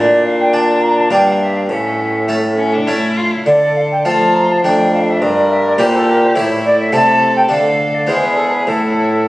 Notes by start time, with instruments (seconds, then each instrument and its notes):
Already playing: harpsichord A#2, bassoon A#2, violin D4, flute D5
0.25 flute F5
0.40 flute G5
0.53 harpsichord D4 D5, flute A5
0.82 flute A#5
0.97 flute A5
1.10 bassoon G2, harpsichord G2 A#3 D4 D5, flute G5
1.27 flute F5
1.40 flute E5
1.56 flute F5
1.69 harpsichord A2, bassoon A2, violin C#4, flute E5
2.27 violin A3, harpsichord A3 C#4 A4
2.57 violin C#4
2.73 violin D4
2.87 harpsichord A3 C#4 A4, violin E4
3.17 violin F4
3.33 violin E4
3.46 harpsichord D3, bassoon D3, violin A4, flute D5
3.75 flute F5
3.91 flute G5
4.05 harpsichord F3 A3 F4 A4, bassoon F3, violin F4, flute A5
4.34 flute A#5
4.50 flute A5
4.63 bassoon F2, harpsichord F2 A3 D4 A4, violin D4, flute G5
4.93 flute F5
5.08 flute E5
5.21 bassoon G2, harpsichord G2, violin A#4, flute D5
5.50 flute E5
5.66 flute D5
5.78 bassoon A#2, harpsichord A#2 A#3 E4 G4, violin G4, flute C5
5.95 flute A4
6.09 flute A#4
6.23 flute C5
6.35 bassoon A2, harpsichord A2 A3 E4 G4, violin E4, flute C#5
6.65 flute D5
6.79 flute E5
6.91 harpsichord C3 A3 E4 A4, bassoon C3, violin A4, flute A5
7.36 flute G5
7.48 harpsichord D3 A3 D4 A4, bassoon D3, flute F5
7.94 flute D5
8.07 harpsichord E2 G#3 B3 E4, bassoon E2, violin G#4, flute C5
8.22 flute B4
8.36 flute A4
8.51 flute B4
8.65 harpsichord A2, bassoon A2, violin E4, flute A4